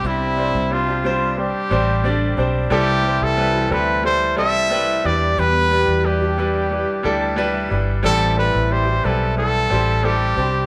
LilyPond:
<<
  \new Staff \with { instrumentName = "Trumpet" } { \time 4/4 \key a \minor \tempo 4 = 90 e'4 f'4 g'4. r8 | g'8. a'8. b'8 c''8 e''4 d''8 | b'4 g'2~ g'8 r8 | a'8 b'8 c''8 a'8 a'4 g'4 | }
  \new Staff \with { instrumentName = "Grand piano" } { \time 4/4 \key a \minor << { c4 r2. | c4. r2 e8~ | e4 r4. g''16 a''16 g''16 e''16 d''8 | a,4. r2 c8 | } \\ { <g c' d' c''>8 <g c' d' c''>8 <g c' d' c''>8 <g c' d' c''>8 <g c' d' c''>8 <g c' d' c''>8 <g c' d' d''>8 <g c' d' c''>8 | <g c' e' a'>8 <g c' e' c''>8 <g c' e' b'>8 <g c' e' a'>8 <g c' e' a'>8 <g c' e' a'>8 <g c' e' b'>8 <g d' e' b'>8~ | <g d' e' b'>8 <g d' e' b'>8 <g d' e' b'>8 <g d' e' b'>8 <g d' e' b'>8 <g d' e' a'>8 <g d' e' b'>8 <g d' e' b'>8 | <g c' e' a'>8 <g c' e' a'>8 <g c' e' g'>8 <g c' e' b'>8 <g c' e' a'>8 <g c' e' c''>8 <g c' e' a'>8 <g c' d' c''>8 | } >> }
  \new Staff \with { instrumentName = "Steel-string acoustic guitar" } { \time 4/4 \key a \minor <c g c' d' g'>4~ <c g c' d' g'>16 <c' d' g'>16 <g c' d' g'>4 <g c' d' g'>8 <g c' d' g'>8 <g c' d' g'>8 | <c e a e' g'>4~ <c e a e' g'>16 <a e' g'>16 <e a e' g'>4 <e a e' g'>8 <e a e' g'>8 <e g d' g'>8 | <e, b, e g d' g'>4~ <e, b, e g d' g'>16 <e g d' g'>16 <e g d' g'>4 <e g d' g'>8 <e g d' g'>8 <e g d' g'>8 | <a, e g c' g'>4~ <a, e g c' g'>16 <g c' g'>16 <e g c' g'>4 <e g c' g'>8 <e g c' g'>8 <g c' d' g'>8 | }
  \new Staff \with { instrumentName = "French horn section" } { \time 4/4 \key a \minor <c c'>2~ <c c'>8 r8 <d d'>8 r8 | <e e'>2. r8 <g g'>8~ | <g g'>2.~ <g g'>8 r8 | <e e'>2. r8 <g g'>8 | }
  \new Staff \with { instrumentName = "Fingered electric bass" } { \clef bass \time 4/4 \key a \minor c,8. c,4. r16 a,,4 b,,8 | c,8. c,8. d,4 c,4 e,8 | e,8. e,4. r16 d,4 g,,8 | a,,8. a,,8. b,,4 a,,4 c,8 | }
>>